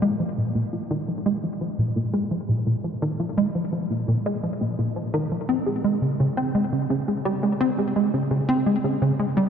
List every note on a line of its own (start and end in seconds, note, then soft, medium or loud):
0.02 0.16 G#3 loud
0.20 0.29 F3 medium
0.38 0.52 A#2 medium
0.55 0.65 A#2 medium
0.73 0.79 F3 medium
0.91 1.05 D#3 medium
1.08 1.18 F3 medium
1.26 1.35 G#3 loud
1.43 1.58 F3 medium
1.61 1.75 F3 medium
1.79 1.93 A#2 medium
1.96 2.06 A#2 medium
2.14 2.28 G#3 medium
2.31 2.41 F3 medium
2.49 2.63 A#2 medium
2.67 2.76 A#2 medium
2.84 2.90 F3 medium
3.02 3.16 D#3 loud
3.20 3.29 F3 medium
3.37 3.47 G#3 loud
3.55 3.69 F3 medium
3.73 3.87 F3 medium
3.90 4.05 A#2 medium
4.08 4.18 A#2 medium
4.26 4.40 G#3 medium
4.43 4.53 F3 medium
4.61 4.75 A#2 medium
4.79 4.88 A#2 medium
4.96 5.02 F3 medium
5.14 5.28 D#3 loud
5.32 5.41 F3 medium
5.49 5.59 C4 medium
5.66 5.81 G#3 medium
5.84 5.99 G#3 medium
6.02 6.16 C#3 medium
6.20 6.29 C#3 medium
6.37 6.52 C4 medium
6.55 6.64 G#3 medium
6.73 6.87 C#3 medium
6.90 7.00 C#3 medium
7.08 7.14 G#3 medium
7.25 7.40 G3 loud
7.43 7.53 G#3 medium
7.61 7.70 C4 loud
7.78 7.93 G#3 medium
7.96 8.10 G#3 medium
8.14 8.28 C#3 medium
8.31 8.41 C#3 medium
8.49 8.63 C4 loud
8.66 8.76 G#3 medium
8.84 8.99 C#3 medium
9.02 9.12 C#3 medium
9.19 9.25 G#3 medium
9.37 9.49 G3 medium